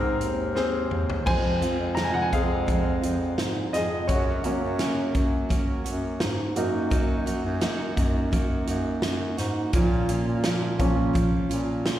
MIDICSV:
0, 0, Header, 1, 5, 480
1, 0, Start_track
1, 0, Tempo, 706048
1, 860, Time_signature, 4, 2, 24, 8
1, 8154, End_track
2, 0, Start_track
2, 0, Title_t, "Grand piano"
2, 0, Program_c, 0, 0
2, 0, Note_on_c, 0, 44, 62
2, 0, Note_on_c, 0, 60, 68
2, 0, Note_on_c, 0, 68, 60
2, 0, Note_on_c, 0, 70, 81
2, 41, Control_c, 0, 64, 127
2, 231, Note_off_c, 0, 60, 0
2, 235, Note_off_c, 0, 68, 0
2, 239, Note_off_c, 0, 70, 0
2, 375, Note_on_c, 0, 60, 64
2, 378, Note_on_c, 0, 68, 60
2, 386, Note_on_c, 0, 72, 65
2, 589, Note_off_c, 0, 44, 0
2, 717, Note_off_c, 0, 60, 0
2, 718, Note_off_c, 0, 68, 0
2, 722, Note_off_c, 0, 72, 0
2, 857, Note_on_c, 0, 80, 91
2, 866, Note_on_c, 0, 72, 69
2, 868, Control_c, 0, 64, 0
2, 971, Control_c, 0, 64, 127
2, 1308, Note_off_c, 0, 72, 0
2, 1324, Note_on_c, 0, 82, 80
2, 1345, Note_off_c, 0, 80, 0
2, 1386, Note_on_c, 0, 80, 73
2, 1390, Note_off_c, 0, 82, 0
2, 1452, Note_off_c, 0, 80, 0
2, 1453, Note_on_c, 0, 78, 77
2, 1508, Note_on_c, 0, 80, 80
2, 1517, Note_off_c, 0, 78, 0
2, 1575, Note_off_c, 0, 80, 0
2, 1584, Note_on_c, 0, 77, 89
2, 1588, Note_on_c, 0, 65, 47
2, 1590, Note_on_c, 0, 56, 48
2, 1595, Note_on_c, 0, 60, 52
2, 1595, Note_on_c, 0, 68, 69
2, 2520, Note_off_c, 0, 68, 0
2, 2537, Note_on_c, 0, 75, 78
2, 2554, Note_on_c, 0, 68, 57
2, 2571, Note_off_c, 0, 77, 0
2, 2757, Note_off_c, 0, 65, 0
2, 2758, Note_off_c, 0, 56, 0
2, 2760, Note_off_c, 0, 60, 0
2, 2771, Note_off_c, 0, 68, 0
2, 2771, Note_on_c, 0, 73, 68
2, 2786, Note_off_c, 0, 75, 0
2, 2786, Note_on_c, 0, 66, 53
2, 2790, Control_c, 0, 64, 0
2, 2897, Control_c, 0, 64, 127
2, 3025, Note_on_c, 0, 54, 49
2, 3028, Note_on_c, 0, 58, 49
2, 3032, Note_on_c, 0, 61, 58
2, 3342, Note_off_c, 0, 54, 0
2, 3343, Note_off_c, 0, 58, 0
2, 3345, Note_off_c, 0, 61, 0
2, 3708, Note_off_c, 0, 73, 0
2, 3716, Note_off_c, 0, 66, 0
2, 4463, Note_on_c, 0, 54, 54
2, 4466, Note_on_c, 0, 58, 51
2, 4469, Note_on_c, 0, 63, 57
2, 4470, Control_c, 0, 64, 0
2, 4594, Control_c, 0, 64, 127
2, 4781, Note_off_c, 0, 54, 0
2, 4783, Note_off_c, 0, 58, 0
2, 4784, Note_off_c, 0, 63, 0
2, 6629, Control_c, 0, 64, 0
2, 6757, Control_c, 0, 64, 127
2, 7336, Note_on_c, 0, 53, 54
2, 7342, Note_on_c, 0, 58, 49
2, 7347, Note_on_c, 0, 61, 63
2, 8031, Note_off_c, 0, 53, 0
2, 8034, Note_off_c, 0, 58, 0
2, 8036, Note_off_c, 0, 61, 0
2, 8154, End_track
3, 0, Start_track
3, 0, Title_t, "Steel-string acoustic guitar"
3, 0, Program_c, 1, 25
3, 855, Note_on_c, 1, 41, 69
3, 858, Note_on_c, 1, 48, 79
3, 860, Note_on_c, 1, 53, 77
3, 864, Note_on_c, 1, 56, 71
3, 865, Note_on_c, 1, 60, 77
3, 869, Note_on_c, 1, 65, 70
3, 1084, Note_off_c, 1, 65, 0
3, 1091, Note_off_c, 1, 56, 0
3, 1091, Note_off_c, 1, 60, 0
3, 1092, Note_on_c, 1, 65, 65
3, 1094, Note_off_c, 1, 53, 0
3, 1097, Note_off_c, 1, 41, 0
3, 1097, Note_off_c, 1, 48, 0
3, 1099, Note_on_c, 1, 60, 64
3, 1100, Note_on_c, 1, 56, 58
3, 1102, Note_on_c, 1, 53, 58
3, 1105, Note_on_c, 1, 48, 52
3, 1107, Note_on_c, 1, 41, 51
3, 1325, Note_off_c, 1, 41, 0
3, 1329, Note_off_c, 1, 48, 0
3, 1330, Note_off_c, 1, 53, 0
3, 1332, Note_off_c, 1, 56, 0
3, 1333, Note_on_c, 1, 41, 77
3, 1336, Note_off_c, 1, 60, 0
3, 1336, Note_off_c, 1, 65, 0
3, 1337, Note_on_c, 1, 48, 73
3, 1339, Note_on_c, 1, 53, 83
3, 1340, Note_on_c, 1, 56, 82
3, 1344, Note_on_c, 1, 60, 83
3, 1346, Note_on_c, 1, 65, 85
3, 1568, Note_off_c, 1, 65, 0
3, 1573, Note_off_c, 1, 60, 0
3, 1576, Note_on_c, 1, 65, 47
3, 1577, Note_off_c, 1, 41, 0
3, 1579, Note_off_c, 1, 48, 0
3, 1579, Note_off_c, 1, 53, 0
3, 1580, Note_off_c, 1, 56, 0
3, 1581, Note_on_c, 1, 60, 51
3, 1588, Note_on_c, 1, 56, 43
3, 1592, Note_on_c, 1, 53, 44
3, 1804, Note_off_c, 1, 53, 0
3, 1811, Note_off_c, 1, 56, 0
3, 1812, Note_on_c, 1, 53, 55
3, 1818, Note_off_c, 1, 60, 0
3, 1818, Note_off_c, 1, 65, 0
3, 1819, Note_on_c, 1, 56, 54
3, 1827, Note_on_c, 1, 60, 62
3, 1831, Note_on_c, 1, 65, 63
3, 2042, Note_off_c, 1, 65, 0
3, 2049, Note_off_c, 1, 60, 0
3, 2050, Note_on_c, 1, 65, 50
3, 2055, Note_off_c, 1, 56, 0
3, 2056, Note_off_c, 1, 53, 0
3, 2058, Note_on_c, 1, 60, 50
3, 2064, Note_on_c, 1, 56, 44
3, 2071, Note_on_c, 1, 53, 43
3, 2523, Note_off_c, 1, 65, 0
3, 2531, Note_off_c, 1, 60, 0
3, 2531, Note_on_c, 1, 65, 52
3, 2538, Note_off_c, 1, 56, 0
3, 2539, Note_on_c, 1, 60, 52
3, 2540, Note_off_c, 1, 53, 0
3, 2546, Note_on_c, 1, 56, 48
3, 2548, Note_on_c, 1, 53, 44
3, 2772, Note_on_c, 1, 42, 73
3, 2775, Note_off_c, 1, 53, 0
3, 2776, Note_off_c, 1, 65, 0
3, 2776, Note_on_c, 1, 49, 83
3, 2778, Note_off_c, 1, 56, 0
3, 2778, Note_on_c, 1, 54, 86
3, 2780, Note_off_c, 1, 60, 0
3, 2780, Note_on_c, 1, 58, 76
3, 2784, Note_on_c, 1, 61, 76
3, 2786, Note_on_c, 1, 66, 85
3, 3007, Note_off_c, 1, 66, 0
3, 3010, Note_off_c, 1, 61, 0
3, 3013, Note_off_c, 1, 54, 0
3, 3013, Note_off_c, 1, 58, 0
3, 3015, Note_on_c, 1, 66, 57
3, 3016, Note_off_c, 1, 42, 0
3, 3016, Note_off_c, 1, 49, 0
3, 3018, Note_on_c, 1, 61, 64
3, 3021, Note_on_c, 1, 54, 59
3, 3021, Note_on_c, 1, 58, 60
3, 3024, Note_on_c, 1, 49, 59
3, 3029, Note_on_c, 1, 42, 58
3, 3246, Note_off_c, 1, 42, 0
3, 3250, Note_off_c, 1, 49, 0
3, 3252, Note_off_c, 1, 54, 0
3, 3254, Note_off_c, 1, 58, 0
3, 3254, Note_on_c, 1, 42, 72
3, 3257, Note_off_c, 1, 61, 0
3, 3257, Note_off_c, 1, 66, 0
3, 3258, Note_on_c, 1, 49, 82
3, 3260, Note_on_c, 1, 54, 81
3, 3262, Note_on_c, 1, 58, 91
3, 3265, Note_on_c, 1, 61, 88
3, 3266, Note_on_c, 1, 66, 88
3, 3483, Note_off_c, 1, 66, 0
3, 3490, Note_off_c, 1, 61, 0
3, 3491, Note_on_c, 1, 66, 52
3, 3495, Note_off_c, 1, 58, 0
3, 3497, Note_off_c, 1, 42, 0
3, 3499, Note_off_c, 1, 49, 0
3, 3499, Note_on_c, 1, 61, 50
3, 3500, Note_off_c, 1, 54, 0
3, 3504, Note_on_c, 1, 58, 42
3, 3508, Note_on_c, 1, 54, 46
3, 3725, Note_off_c, 1, 54, 0
3, 3732, Note_off_c, 1, 58, 0
3, 3733, Note_on_c, 1, 54, 60
3, 3735, Note_off_c, 1, 66, 0
3, 3739, Note_off_c, 1, 61, 0
3, 3740, Note_on_c, 1, 58, 60
3, 3748, Note_on_c, 1, 61, 64
3, 3750, Note_on_c, 1, 66, 61
3, 3964, Note_off_c, 1, 66, 0
3, 3971, Note_off_c, 1, 61, 0
3, 3972, Note_on_c, 1, 66, 57
3, 3976, Note_off_c, 1, 54, 0
3, 3976, Note_off_c, 1, 58, 0
3, 3979, Note_on_c, 1, 61, 52
3, 3984, Note_on_c, 1, 58, 47
3, 3990, Note_on_c, 1, 54, 43
3, 4454, Note_off_c, 1, 66, 0
3, 4457, Note_on_c, 1, 66, 63
3, 4460, Note_off_c, 1, 61, 0
3, 4467, Note_on_c, 1, 63, 47
3, 4473, Note_off_c, 1, 58, 0
3, 4476, Note_on_c, 1, 58, 43
3, 4691, Note_off_c, 1, 54, 0
3, 4691, Note_off_c, 1, 58, 0
3, 4694, Note_on_c, 1, 54, 85
3, 4695, Note_off_c, 1, 63, 0
3, 4699, Note_off_c, 1, 66, 0
3, 4699, Note_on_c, 1, 58, 76
3, 4703, Note_on_c, 1, 63, 85
3, 4708, Note_on_c, 1, 66, 83
3, 4927, Note_off_c, 1, 66, 0
3, 4933, Note_off_c, 1, 63, 0
3, 4935, Note_off_c, 1, 58, 0
3, 4935, Note_on_c, 1, 66, 68
3, 4937, Note_off_c, 1, 54, 0
3, 4941, Note_on_c, 1, 63, 62
3, 4943, Note_on_c, 1, 58, 58
3, 4950, Note_on_c, 1, 54, 55
3, 5165, Note_off_c, 1, 54, 0
3, 5172, Note_off_c, 1, 58, 0
3, 5174, Note_on_c, 1, 54, 88
3, 5176, Note_off_c, 1, 63, 0
3, 5177, Note_off_c, 1, 66, 0
3, 5180, Note_on_c, 1, 58, 86
3, 5184, Note_on_c, 1, 63, 93
3, 5186, Note_on_c, 1, 66, 95
3, 5408, Note_off_c, 1, 66, 0
3, 5416, Note_on_c, 1, 66, 55
3, 5417, Note_off_c, 1, 54, 0
3, 5417, Note_off_c, 1, 63, 0
3, 5420, Note_off_c, 1, 58, 0
3, 5425, Note_on_c, 1, 63, 51
3, 5433, Note_on_c, 1, 58, 47
3, 5653, Note_off_c, 1, 58, 0
3, 5653, Note_on_c, 1, 54, 60
3, 5658, Note_off_c, 1, 66, 0
3, 5660, Note_off_c, 1, 63, 0
3, 5661, Note_on_c, 1, 58, 67
3, 5668, Note_on_c, 1, 63, 60
3, 5672, Note_on_c, 1, 66, 65
3, 5886, Note_off_c, 1, 66, 0
3, 5894, Note_on_c, 1, 66, 60
3, 5896, Note_off_c, 1, 63, 0
3, 5897, Note_off_c, 1, 54, 0
3, 5900, Note_off_c, 1, 58, 0
3, 5904, Note_on_c, 1, 63, 52
3, 5912, Note_on_c, 1, 58, 47
3, 6364, Note_off_c, 1, 66, 0
3, 6372, Note_on_c, 1, 66, 61
3, 6373, Note_off_c, 1, 63, 0
3, 6381, Note_on_c, 1, 63, 51
3, 6387, Note_off_c, 1, 58, 0
3, 6390, Note_on_c, 1, 58, 47
3, 6613, Note_off_c, 1, 58, 0
3, 6614, Note_on_c, 1, 46, 83
3, 6616, Note_off_c, 1, 66, 0
3, 6619, Note_on_c, 1, 53, 87
3, 6621, Note_off_c, 1, 63, 0
3, 6621, Note_on_c, 1, 58, 84
3, 6626, Note_on_c, 1, 61, 85
3, 6629, Note_on_c, 1, 65, 94
3, 6849, Note_off_c, 1, 65, 0
3, 6853, Note_off_c, 1, 61, 0
3, 6856, Note_off_c, 1, 58, 0
3, 6857, Note_off_c, 1, 46, 0
3, 6857, Note_on_c, 1, 65, 67
3, 6859, Note_off_c, 1, 53, 0
3, 6861, Note_on_c, 1, 61, 69
3, 6864, Note_on_c, 1, 58, 62
3, 6868, Note_on_c, 1, 53, 62
3, 6870, Note_on_c, 1, 46, 57
3, 7088, Note_off_c, 1, 46, 0
3, 7094, Note_off_c, 1, 53, 0
3, 7095, Note_off_c, 1, 58, 0
3, 7096, Note_on_c, 1, 46, 82
3, 7099, Note_off_c, 1, 65, 0
3, 7101, Note_off_c, 1, 61, 0
3, 7102, Note_on_c, 1, 53, 86
3, 7103, Note_on_c, 1, 58, 92
3, 7108, Note_on_c, 1, 61, 90
3, 7109, Note_on_c, 1, 65, 97
3, 7326, Note_off_c, 1, 65, 0
3, 7334, Note_on_c, 1, 65, 57
3, 7337, Note_off_c, 1, 61, 0
3, 7338, Note_off_c, 1, 46, 0
3, 7341, Note_off_c, 1, 53, 0
3, 7341, Note_off_c, 1, 58, 0
3, 7346, Note_on_c, 1, 61, 53
3, 7351, Note_on_c, 1, 58, 46
3, 7567, Note_off_c, 1, 58, 0
3, 7569, Note_on_c, 1, 53, 64
3, 7575, Note_off_c, 1, 61, 0
3, 7575, Note_on_c, 1, 58, 67
3, 7577, Note_off_c, 1, 65, 0
3, 7583, Note_on_c, 1, 61, 69
3, 7586, Note_on_c, 1, 65, 71
3, 7805, Note_off_c, 1, 65, 0
3, 7813, Note_on_c, 1, 65, 56
3, 7815, Note_off_c, 1, 53, 0
3, 7817, Note_off_c, 1, 61, 0
3, 7818, Note_off_c, 1, 58, 0
3, 7825, Note_on_c, 1, 61, 55
3, 7832, Note_on_c, 1, 58, 45
3, 8154, Note_off_c, 1, 58, 0
3, 8154, Note_off_c, 1, 61, 0
3, 8154, Note_off_c, 1, 65, 0
3, 8154, End_track
4, 0, Start_track
4, 0, Title_t, "Bass clarinet"
4, 0, Program_c, 2, 71
4, 0, Note_on_c, 2, 44, 94
4, 125, Note_off_c, 2, 44, 0
4, 142, Note_on_c, 2, 39, 76
4, 594, Note_off_c, 2, 39, 0
4, 622, Note_on_c, 2, 39, 76
4, 844, Note_off_c, 2, 39, 0
4, 864, Note_on_c, 2, 41, 91
4, 1197, Note_off_c, 2, 41, 0
4, 1218, Note_on_c, 2, 41, 81
4, 1554, Note_off_c, 2, 41, 0
4, 1582, Note_on_c, 2, 41, 86
4, 2034, Note_off_c, 2, 41, 0
4, 2061, Note_on_c, 2, 41, 76
4, 2284, Note_off_c, 2, 41, 0
4, 2298, Note_on_c, 2, 44, 75
4, 2522, Note_off_c, 2, 44, 0
4, 2537, Note_on_c, 2, 41, 69
4, 2762, Note_off_c, 2, 41, 0
4, 2781, Note_on_c, 2, 42, 93
4, 3115, Note_off_c, 2, 42, 0
4, 3140, Note_on_c, 2, 42, 92
4, 3475, Note_off_c, 2, 42, 0
4, 3500, Note_on_c, 2, 42, 88
4, 3776, Note_off_c, 2, 42, 0
4, 3981, Note_on_c, 2, 42, 86
4, 4204, Note_off_c, 2, 42, 0
4, 4224, Note_on_c, 2, 44, 90
4, 4445, Note_off_c, 2, 44, 0
4, 4463, Note_on_c, 2, 42, 87
4, 5034, Note_off_c, 2, 42, 0
4, 5061, Note_on_c, 2, 42, 99
4, 5395, Note_off_c, 2, 42, 0
4, 5420, Note_on_c, 2, 42, 95
4, 5873, Note_off_c, 2, 42, 0
4, 5903, Note_on_c, 2, 42, 91
4, 6125, Note_off_c, 2, 42, 0
4, 6140, Note_on_c, 2, 42, 85
4, 6363, Note_off_c, 2, 42, 0
4, 6380, Note_on_c, 2, 44, 86
4, 6603, Note_off_c, 2, 44, 0
4, 6619, Note_on_c, 2, 46, 102
4, 6954, Note_off_c, 2, 46, 0
4, 6983, Note_on_c, 2, 46, 92
4, 7317, Note_off_c, 2, 46, 0
4, 7337, Note_on_c, 2, 46, 96
4, 7614, Note_off_c, 2, 46, 0
4, 7824, Note_on_c, 2, 46, 93
4, 8045, Note_off_c, 2, 46, 0
4, 8063, Note_on_c, 2, 46, 83
4, 8154, Note_off_c, 2, 46, 0
4, 8154, End_track
5, 0, Start_track
5, 0, Title_t, "Drums"
5, 141, Note_on_c, 9, 42, 65
5, 209, Note_off_c, 9, 42, 0
5, 379, Note_on_c, 9, 38, 43
5, 447, Note_off_c, 9, 38, 0
5, 620, Note_on_c, 9, 45, 69
5, 688, Note_off_c, 9, 45, 0
5, 745, Note_on_c, 9, 43, 75
5, 813, Note_off_c, 9, 43, 0
5, 862, Note_on_c, 9, 36, 98
5, 862, Note_on_c, 9, 49, 77
5, 930, Note_off_c, 9, 36, 0
5, 930, Note_off_c, 9, 49, 0
5, 1102, Note_on_c, 9, 42, 53
5, 1170, Note_off_c, 9, 42, 0
5, 1338, Note_on_c, 9, 42, 77
5, 1340, Note_on_c, 9, 38, 93
5, 1406, Note_off_c, 9, 42, 0
5, 1408, Note_off_c, 9, 38, 0
5, 1581, Note_on_c, 9, 42, 61
5, 1582, Note_on_c, 9, 36, 73
5, 1649, Note_off_c, 9, 42, 0
5, 1650, Note_off_c, 9, 36, 0
5, 1822, Note_on_c, 9, 36, 84
5, 1823, Note_on_c, 9, 42, 71
5, 1890, Note_off_c, 9, 36, 0
5, 1891, Note_off_c, 9, 42, 0
5, 2062, Note_on_c, 9, 42, 65
5, 2130, Note_off_c, 9, 42, 0
5, 2298, Note_on_c, 9, 38, 95
5, 2304, Note_on_c, 9, 42, 74
5, 2366, Note_off_c, 9, 38, 0
5, 2372, Note_off_c, 9, 42, 0
5, 2541, Note_on_c, 9, 38, 31
5, 2541, Note_on_c, 9, 42, 61
5, 2609, Note_off_c, 9, 38, 0
5, 2609, Note_off_c, 9, 42, 0
5, 2779, Note_on_c, 9, 42, 72
5, 2780, Note_on_c, 9, 36, 90
5, 2847, Note_off_c, 9, 42, 0
5, 2848, Note_off_c, 9, 36, 0
5, 3018, Note_on_c, 9, 42, 56
5, 3086, Note_off_c, 9, 42, 0
5, 3256, Note_on_c, 9, 42, 78
5, 3259, Note_on_c, 9, 38, 85
5, 3324, Note_off_c, 9, 42, 0
5, 3327, Note_off_c, 9, 38, 0
5, 3498, Note_on_c, 9, 42, 58
5, 3500, Note_on_c, 9, 36, 81
5, 3566, Note_off_c, 9, 42, 0
5, 3568, Note_off_c, 9, 36, 0
5, 3741, Note_on_c, 9, 42, 73
5, 3742, Note_on_c, 9, 36, 86
5, 3809, Note_off_c, 9, 42, 0
5, 3810, Note_off_c, 9, 36, 0
5, 3981, Note_on_c, 9, 42, 66
5, 4049, Note_off_c, 9, 42, 0
5, 4217, Note_on_c, 9, 38, 106
5, 4223, Note_on_c, 9, 42, 84
5, 4285, Note_off_c, 9, 38, 0
5, 4291, Note_off_c, 9, 42, 0
5, 4460, Note_on_c, 9, 42, 65
5, 4528, Note_off_c, 9, 42, 0
5, 4699, Note_on_c, 9, 42, 76
5, 4701, Note_on_c, 9, 36, 97
5, 4767, Note_off_c, 9, 42, 0
5, 4769, Note_off_c, 9, 36, 0
5, 4942, Note_on_c, 9, 42, 59
5, 5010, Note_off_c, 9, 42, 0
5, 5175, Note_on_c, 9, 42, 78
5, 5178, Note_on_c, 9, 38, 93
5, 5243, Note_off_c, 9, 42, 0
5, 5246, Note_off_c, 9, 38, 0
5, 5420, Note_on_c, 9, 36, 86
5, 5420, Note_on_c, 9, 42, 61
5, 5488, Note_off_c, 9, 36, 0
5, 5488, Note_off_c, 9, 42, 0
5, 5661, Note_on_c, 9, 36, 88
5, 5661, Note_on_c, 9, 42, 77
5, 5729, Note_off_c, 9, 36, 0
5, 5729, Note_off_c, 9, 42, 0
5, 5897, Note_on_c, 9, 42, 70
5, 5965, Note_off_c, 9, 42, 0
5, 6133, Note_on_c, 9, 38, 101
5, 6139, Note_on_c, 9, 42, 83
5, 6201, Note_off_c, 9, 38, 0
5, 6207, Note_off_c, 9, 42, 0
5, 6378, Note_on_c, 9, 38, 34
5, 6378, Note_on_c, 9, 42, 65
5, 6445, Note_off_c, 9, 38, 0
5, 6446, Note_off_c, 9, 42, 0
5, 6614, Note_on_c, 9, 42, 78
5, 6618, Note_on_c, 9, 36, 102
5, 6682, Note_off_c, 9, 42, 0
5, 6686, Note_off_c, 9, 36, 0
5, 6857, Note_on_c, 9, 42, 59
5, 6925, Note_off_c, 9, 42, 0
5, 7094, Note_on_c, 9, 42, 85
5, 7096, Note_on_c, 9, 38, 103
5, 7162, Note_off_c, 9, 42, 0
5, 7164, Note_off_c, 9, 38, 0
5, 7338, Note_on_c, 9, 42, 65
5, 7340, Note_on_c, 9, 36, 83
5, 7406, Note_off_c, 9, 42, 0
5, 7408, Note_off_c, 9, 36, 0
5, 7582, Note_on_c, 9, 36, 93
5, 7582, Note_on_c, 9, 42, 75
5, 7650, Note_off_c, 9, 36, 0
5, 7650, Note_off_c, 9, 42, 0
5, 7822, Note_on_c, 9, 42, 74
5, 7890, Note_off_c, 9, 42, 0
5, 8060, Note_on_c, 9, 38, 106
5, 8066, Note_on_c, 9, 42, 85
5, 8128, Note_off_c, 9, 38, 0
5, 8134, Note_off_c, 9, 42, 0
5, 8154, End_track
0, 0, End_of_file